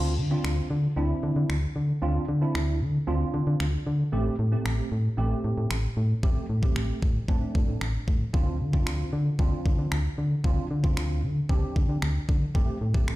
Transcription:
Already playing: fm bass D2, tine electric piano C4 D4 F4
0.18 fm bass D3
0.31 tine electric piano C4 D4 F4
0.44 fm bass D2, finger snap
0.70 fm bass D3
0.97 fm bass D2, tine electric piano C4 D4 E4
1.23 fm bass D3
1.36 fm bass D3
1.49 fm bass D2, finger snap
1.76 fm bass D3
2.02 fm bass D2, tine electric piano C4 D4 F4
2.28 fm bass D3
2.41 tine electric piano C4 D4 E4
2.55 fm bass D2, finger snap
2.81 fm bass D3
3.07 fm bass D2, tine electric piano C4 D4 F4
3.34 fm bass D3
3.47 fm bass D3
3.60 fm bass D2, finger snap
3.87 fm bass D3
4.12 fm bass A1, tine electric piano A3 C4 G4
4.39 fm bass A2
4.52 tine electric piano A3 C4 G4
4.65 fm bass A1, finger snap
4.92 fm bass A2
5.18 fm bass A1, tine electric piano A3 C4 G4
5.44 fm bass A2
5.58 fm bass A2
5.71 fm bass A1, finger snap
5.97 fm bass A2
6.23 fm bass A1, tine electric piano A3 C4 G4, kick
6.49 fm bass A2
6.62 tine electric piano A3 C4 G4, kick
6.76 fm bass A1, finger snap
7.02 fm bass A2, kick
7.28 fm bass A1, tine electric piano A3 C4 D4, kick
7.55 fm bass A2, kick
7.68 fm bass A2
7.81 fm bass A1, finger snap
8.08 fm bass A2, kick
8.34 fm bass D2, tine electric piano C4 D4 F4, kick
8.60 fm bass D3
8.73 tine electric piano C4 D4 F4, kick
8.87 fm bass D2, finger snap
9.13 fm bass D3
9.39 fm bass D2, tine electric piano C4 D4 F4, kick
9.66 fm bass D3, kick
9.79 fm bass D3
9.92 fm bass D2, finger snap
10.18 fm bass D3
10.44 fm bass D2, tine electric piano C4 D4 F4, kick
10.71 fm bass D3
10.83 tine electric piano C4 D4 F4, kick
10.97 fm bass D2, finger snap
11.23 fm bass D3
11.49 fm bass D2, tine electric piano C4 D4 G4, kick
11.76 fm bass D3, kick
11.89 fm bass D3
12.02 fm bass D2, finger snap
12.29 fm bass D3, kick
12.55 fm bass A1, tine electric piano A3 C4 G4, kick
12.81 fm bass A2
12.94 tine electric piano A3 C4 G4, kick
13.08 fm bass A1, finger snap

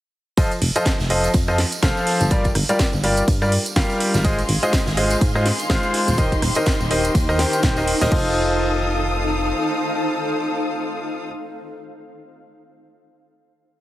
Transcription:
0.37 grand piano F3 F4 A4 C5 D#5, ambient pad D#4, kick, closed hi-hat, tambourine
0.51 ambient pad A4, closed hi-hat, tambourine
0.62 fm bass F1, closed hi-hat, open hi-hat
0.76 grand piano F3 F4 A4 C5 D#5, closed hi-hat, tambourine
0.85 kick, snare, closed hi-hat
1.00 fm bass F1, snare, tambourine
1.10 grand piano F3 F4 A4 C5 D#5, ambient pad C5, closed hi-hat, open hi-hat
1.24 ambient pad F5, closed hi-hat, tambourine
1.34 fm bass F2, kick, closed hi-hat, tambourine
1.48 grand piano F3 F4 A4 C5 D#5, cross-stick, tambourine
1.58 snare, closed hi-hat, open hi-hat
1.72 closed hi-hat, tambourine
1.83 fm bass F1, grand piano F3 F4 A4 C5 F5, kick, snare, closed hi-hat, tambourine
1.97 tambourine
2.07 snare, open hi-hat
2.21 fm bass G1, closed hi-hat, tambourine
2.31 grand piano G3 F4 G4 A#4 D5, ambient pad D4, kick, closed hi-hat, tambourine
2.44 kick, closed hi-hat, tambourine
2.50 ambient pad G4
2.55 fm bass G1, cross-stick, closed hi-hat, open hi-hat
2.69 grand piano G3 F4 G4 A#4 D5, closed hi-hat, tambourine
2.79 kick, snare, closed hi-hat, tambourine
2.93 fm bass G1, tambourine
2.99 ambient pad A#4
3.03 grand piano G3 F4 G4 A#4 D5, closed hi-hat, open hi-hat
3.17 closed hi-hat, tambourine
3.28 fm bass G2, kick, closed hi-hat, tambourine
3.42 grand piano G3 F4 G4 A#4 D5, cross-stick, tambourine
3.52 closed hi-hat, open hi-hat
3.66 closed hi-hat, tambourine
3.76 fm bass G1, grand piano G3 F4 G4 A#4 F5, kick, snare, closed hi-hat, tambourine
3.90 closed hi-hat, tambourine
4.00 closed hi-hat, open hi-hat
4.14 fm bass G#1, snare, closed hi-hat, tambourine
4.24 grand piano G#3 F4 G#4 C5 D#5, ambient pad D#4, string section G#4 F5 C6, kick, closed hi-hat, tambourine
4.36 ambient pad G#4, closed hi-hat, tambourine
4.48 fm bass G#1, closed hi-hat, open hi-hat
4.63 grand piano G#3 F4 G#4 C5 D#5, closed hi-hat, tambourine
4.71 ambient pad C5, kick, snare, closed hi-hat, tambourine
4.86 fm bass G#1, snare, tambourine
4.97 grand piano G#3 F4 G#4 C5 D#5, closed hi-hat, open hi-hat
5.10 closed hi-hat, tambourine
5.21 fm bass G#2, kick, closed hi-hat, tambourine
5.35 grand piano G#3 F4 G#4 C5 D#5, cross-stick, tambourine
5.46 snare, closed hi-hat, open hi-hat
5.59 closed hi-hat, tambourine
5.70 fm bass G#1, grand piano G#3 F4 G#4 C5 F5, kick, snare, closed hi-hat
5.83 tambourine
5.94 snare, open hi-hat
6.08 fm bass D#1, closed hi-hat, tambourine
6.18 grand piano D#3 G4 A#4 C5 D#5, string section G4 D#5, kick, closed hi-hat, tambourine
6.32 kick, closed hi-hat, tambourine
6.42 fm bass D#1, ambient pad G5, cross-stick, closed hi-hat, open hi-hat
6.55 grand piano D#3 G4 A#4 C5 D#5, closed hi-hat, tambourine
6.60 ambient pad A#4
6.66 kick, snare, closed hi-hat, tambourine
6.80 fm bass D#1, tambourine
6.91 grand piano D#3 G4 A#4 C5 D#5, closed hi-hat, open hi-hat
7.05 closed hi-hat, tambourine
7.15 fm bass D#2, kick, closed hi-hat, tambourine
7.29 grand piano D#3 G4 A#4 C5 D#5, cross-stick, tambourine
7.39 grand piano D#3 G4 A#4 C5 G5, snare, closed hi-hat, open hi-hat
7.53 closed hi-hat, tambourine
7.63 fm bass D#1, kick, snare, closed hi-hat, tambourine
7.76 grand piano D#3 G4 A#4 C5 D#5, closed hi-hat, tambourine
7.88 closed hi-hat, open hi-hat
8.01 fm bass D#1, grand piano G4 A#4 C5 D#5, snare, closed hi-hat, tambourine
8.12 fm bass F1, ambient pad D#4, grand piano F4 A4 C5 D#5, string section A4 F5 D#6, kick, crash
8.20 ambient pad A4
8.28 ambient pad C5
8.34 ambient pad F5

